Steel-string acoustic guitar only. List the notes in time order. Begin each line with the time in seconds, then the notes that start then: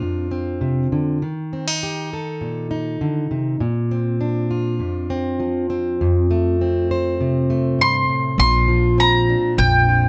Already playing: C4 D4 F4
0.02 F2
0.31 C4
0.61 C3
0.92 D3
1.22 D#3
1.53 C4
1.68 D#4
1.83 G4
2.13 A4
2.41 A#2
2.71 D#4
3.01 D3
3.31 C3
3.60 A#2
3.91 C4
4.21 D4
4.51 F4
4.80 F2
5.10 C4
5.40 F3
5.70 C4
6.01 F2
6.31 A3
6.61 C4
6.91 C5
7.20 C3
7.50 A3
7.79 G2
8.09 A2
8.39 A#2 F4
8.68 F3
8.98 C4
9.29 D4
9.57 F2
9.89 F4